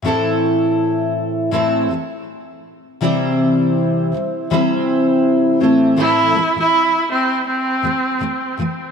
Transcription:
X:1
M:4/4
L:1/16
Q:"Swing 16ths" 1/4=81
K:Am
V:1 name="Viola"
z16 | z16 | E3 E3 C2 C6 z2 |]
V:2 name="Steel-string acoustic guitar" clef=bass
[A,,E,A,CEA]8 [A,,E,A,CEA]2 [A,,E,A,]2 z4 | [C,E,G,CEc]6 [C,E,G,]2 [C,E,G,CEc]6 [A,,E,A,CEc]2 | [A,,E,A,CEA]2 [A,,E,A,] [A,,E,A,]2 z4 z [A,,E,A,]2 [A,,E,A,]2 [A,,E,A,]2 |]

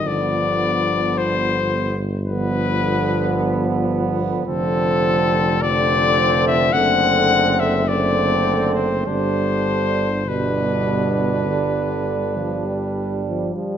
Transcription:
X:1
M:4/4
L:1/16
Q:1/4=52
K:Gphr
V:1 name="Cornet"
d4 c3 z =B6 z2 | [K:Gmix] A4 d3 e ^f3 e d3 c | c4 B8- B2 z2 |]
V:2 name="Flugelhorn"
=B,6- B, z B,8 | [K:Gmix] C4 C4 C4 C4 | D4 D8- D2 z2 |]
V:3 name="Euphonium" clef=bass
F,6- F, z F,8 | [K:Gmix] F,4 F,4 A,4 A,4 | G,4 G,8- G,2 F, G, |]
V:4 name="Trombone" clef=bass
D,6- D, z D,8 | [K:Gmix] D,4 D,4 D,4 D,4 | D,4 B,,4 D,3 F, G,3 F, |]
V:5 name="Tuba" clef=bass
G,,,16 | [K:Gmix] F,,,8 ^F,,,8 | G,,,12- G,,,2 z2 |]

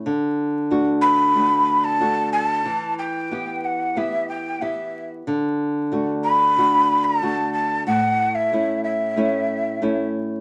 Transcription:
X:1
M:4/4
L:1/16
Q:1/4=92
K:D
V:1 name="Quena"
z6 b4- b a3 a2- | a2 g4 f2 e2 g2 e3 z | z6 b4- b a3 a2 | f3 e3 e8 z2 |]
V:2 name="Nylon-string guitar"
D,4 [A,DF]4 [A,DF]4 [A,DF]4 | E,4 [B,EG]4 [B,EG]4 [B,EG]4 | D,4 [A,DF]4 [A,DF]4 [A,DF]4 | A,,4 [A,CE]4 [A,CE]4 [A,CE]4 |]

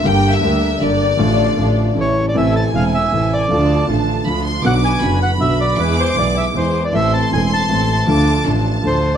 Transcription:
X:1
M:3/4
L:1/16
Q:1/4=157
K:Dm
V:1 name="Violin section"
g3 e4- e d4- | d8 z4 | [K:Am] ^g12 | a8 b2 c'2 |
d'4 b8 | d'8- d'2 z2 | c'12 | d'4 a8 |]
V:2 name="Bandoneon"
z12 | z8 ^c3 d | [K:Am] e2 a2 f2 e4 d2- | d4 z8 |
^f2 ^g4 f2 e2 d2 | B2 c2 d2 e2 c3 d | e2 a2 ^g2 a4 a2- | a4 z4 c3 z |]
V:3 name="String section"
[DGB]4 [DGB]4 [DGB]4 | [DFA]4 [DFA]4 [^CEA]4 | [K:Am] [CEA]4 [CEA]4 [CEA]4 | [DFA]4 [DFA]4 [DFA]4 |
[D^FB]4 [DFB]4 [DFB]4 | [B,E^G]4 [B,EG]4 [B,EG]4 | [CEA]4 [CEA]4 [CEA]4 | [DFA]4 [DFA]4 [DFA]4 |]
V:4 name="Grand piano" clef=bass
[G,,,G,,D,G,B,G]4 [D,,D,G,B,G]4 [G,,,G,,D,G,B,G]4 | [A,,,A,,D,F,A,F]4 [A,,,A,,D,F,A,F]4 [A,,,A,,^C,E,A,E]4 | [K:Am] [A,,,A,,C,E,A,E]4 [E,,,E,,C,E,A,E]4 [A,,,A,,C,E,A,E]4 | [D,,D,F,A,F]4 [A,,,A,,D,F,A,F]4 [D,,D,F,A,F]4 |
[B,,,B,,D,^F,B,^F]4 [^F,,,^F,,D,F,B,F]4 [B,,,B,,D,F,B,F]4 | [E,,E,^G,B,^G]4 [B,,,B,,E,G,B,G]4 [E,,E,G,B,G]4 | [A,,,A,,E,A,CA]4 [E,,,E,,E,A,CA]4 [A,,,A,,E,A,CA]4 | [D,,D,F,A,DA]4 [A,,,A,,F,A,DA]4 [D,,D,F,A,DA]4 |]
V:5 name="Double bass" clef=bass
G,,,4 D,,4 G,,,4 | A,,,4 A,,,4 A,,,4 | [K:Am] A,,,4 E,,,4 A,,,4 | D,,4 A,,,4 D,,4 |
B,,,4 ^F,,,4 B,,,4 | E,,4 B,,,4 E,,4 | A,,,4 E,,,4 A,,,4 | D,,4 A,,,4 D,,4 |]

